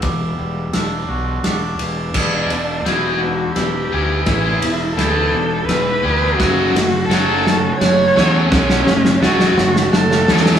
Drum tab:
CC |------------------------|x-----------------------|------------------------|------------------------|
RD |x-------x-------x---x---|----x---x-------x-------|x---x---x-------x-------|x---x---x-------x-------|
SD |--------o-------o-------|o-------o-------o-------|o-------o-------o-------|o---o---o---o---o---o---|
BD |o-----------------------|o-----------------------|o-----------------------|o-----------------------|

CC |------------------------|
RD |------------------------|
SD |o-o-o-o-o-o-o-o-o-o-oooo|
BD |o-----------------------|